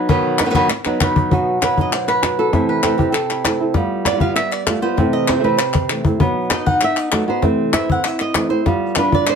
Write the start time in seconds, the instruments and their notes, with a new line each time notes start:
0.09 nylon-string guitar B2 D#3 F#3 B3 D#4 B4, cajon bass
0.39 nylon-string guitar F#3 B3 D#4 B4, cajon slap, clap
0.45 nylon-string guitar D#3 F#3 B3 D#4 B4
0.50 nylon-string guitar D#3 F#3 B3 D#4 B4
0.54 nylon-string guitar B2 D#3 F#3 B3 D#4 B4, cajon bass
0.70 muted nylon-string guitar stroke, cajon slap, clap
0.85 nylon-string guitar F#3 B3 D#4 B4, cajon slap, clap
1.00 nylon-string guitar F#3 B3 D#4 B4, cajon bass, clap
1.16 cajon bass
1.30 nylon-string guitar B2 F#3 B3 D#4 F#4, cajon bass
1.61 nylon-string guitar F#3 D#4 F#4 B4, cajon slap, clap
1.77 nylon-string guitar B3 D#4 F#4, cajon bass
1.81 nylon-string guitar D#5
1.92 nylon-string guitar C5, muted nylon-string guitar stroke, clap
2.08 nylon-string guitar B4, clap
2.22 nylon-string guitar B3 D#4 F#4, cajon slap, clap
2.38 nylon-string guitar B3 D#4 F#4 A4
2.52 nylon-string guitar C3 E3 A3 C4 E4, cajon bass, cajon slap
2.69 nylon-string guitar B4
2.83 nylon-string guitar E3 A3 C4 E4 A4, cajon slap, clap
2.98 nylon-string guitar A3 C4 E4 G4, cajon bass
3.12 nylon-string guitar A4, muted nylon-string guitar stroke, cajon slap, clap
3.30 nylon-string guitar E4, clap
3.44 nylon-string guitar A3 C4 E4, cajon slap, clap
3.60 nylon-string guitar A3 C4 E4
3.74 nylon-string guitar G3 B3 F4, cajon bass, cajon slap
4.05 nylon-string guitar B3 D5, cajon slap, clap
4.12 nylon-string guitar G3 B3 F4
4.16 nylon-string guitar G3 B3 F4
4.20 nylon-string guitar G3 B3 F4 F5, cajon bass
4.36 nylon-string guitar E5, muted nylon-string guitar stroke, clap
4.51 nylon-string guitar D5, clap
4.66 nylon-string guitar G3 A3 B3 F4, cajon slap, clap
4.82 nylon-string guitar B3 F4 C5
4.97 nylon-string guitar C3 E3 A3 C4 E4, cajon bass, cajon slap
5.13 nylon-string guitar D#5
5.28 nylon-string guitar E3 A3 C4 E4 C5, cajon slap, clap
5.35 nylon-string guitar E3 A3 C4 E4
5.39 nylon-string guitar E3 A3 C4 E4
5.44 nylon-string guitar C3 E3 A3 C4 E4 B4, cajon slap
5.57 nylon-string guitar C5, muted nylon-string guitar stroke, clap
5.73 cajon bass, clap
5.90 nylon-string guitar E3 A3 C4 E4, clap
6.05 nylon-string guitar A3 C4 E4, cajon bass
6.19 nylon-string guitar B2 F#3 B3 D#4 F#4, cajon bass
6.50 nylon-string guitar B3 D#4 F#4 D#5, cajon slap, clap
6.66 nylon-string guitar F#5, cajon bass
6.81 nylon-string guitar E5, muted nylon-string guitar stroke, clap
6.97 nylon-string guitar D#5, clap
7.12 nylon-string guitar F#3 A3 B3 D#4 F#4, cajon slap, clap
7.28 nylon-string guitar B3 D#4 F#4 C5, cajon slap
7.42 nylon-string guitar C3 E3 A3 C4 E4, cajon bass, cajon slap
7.73 nylon-string guitar A3 C4 E4 E5, cajon slap, clap
7.89 nylon-string guitar F#5, cajon bass
8.04 nylon-string guitar E5, muted nylon-string guitar stroke, clap
8.19 nylon-string guitar D#5, clap
8.35 nylon-string guitar E3 A3 C4 E4, cajon slap, clap
8.49 nylon-string guitar A3 C4 E4 C5
8.64 nylon-string guitar G3 B3 F4, cajon bass, cajon slap
8.95 nylon-string guitar G3 B3 D4 F4 B4, cajon slap, clap
9.11 nylon-string guitar B3 F4 D5, cajon bass
9.26 nylon-string guitar C5, muted nylon-string guitar stroke, clap